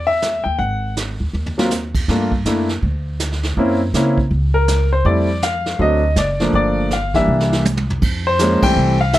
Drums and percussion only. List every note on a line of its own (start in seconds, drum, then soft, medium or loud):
0.22 snare soft
0.22 hi-hat pedal medium
0.59 brush sweep soft
0.59 kick soft
0.97 snare soft
0.97 hi-hat pedal soft
1.34 floor tom soft
1.46 floor tom soft
1.59 snare medium
1.71 snare soft
1.71 hi-hat pedal soft
1.95 kick medium
1.95 crash medium
2.08 brush sweep soft
2.08 kick soft
2.08 snare soft
2.32 kick soft
2.45 snare soft
2.45 hi-hat pedal soft
2.69 snare soft
2.83 brush sweep soft
2.83 kick soft
3.20 snare soft
3.20 hi-hat pedal medium
3.32 snare soft
3.43 snare soft
3.57 brush sweep soft
3.57 kick soft
3.94 snare soft
3.94 hi-hat pedal soft
4.18 kick soft
4.31 brush sweep soft
4.31 kick soft
4.68 snare medium
4.68 hi-hat pedal medium
5.05 brush sweep soft
5.05 kick soft
5.42 snare soft
5.42 hi-hat pedal soft
5.66 snare soft
5.79 brush sweep soft
5.79 kick soft
6.16 snare medium
6.16 hi-hat pedal soft
6.40 snare soft
6.53 brush sweep soft
6.53 kick soft
6.91 snare soft
6.91 hi-hat pedal soft
7.14 kick soft
7.14 snare soft
7.40 snare soft
7.53 snare soft
7.65 hi-hat pedal medium
7.65 high tom medium
7.77 high tom medium
7.90 floor tom medium
8.02 brush sweep soft
8.02 kick medium
8.02 crash medium
8.39 snare medium
8.39 hi-hat pedal medium
8.63 kick medium
8.63 crash medium
8.76 brush sweep soft
9.13 snare medium
9.13 hi-hat pedal medium